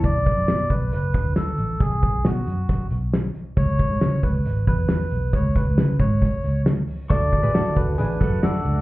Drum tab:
HH |xxxxxxxx|xxxxxxxx|xxxxxxxx|xxxxxxxo|
SD |--o---o-|--o---o-|--o---o-|--o---o-|
BD |oo-o-o--|oo--o---|oo-o-o--|oo-oo---|

HH |xxxxxxxx|
SD |--o---o-|
BD |oo-o-o--|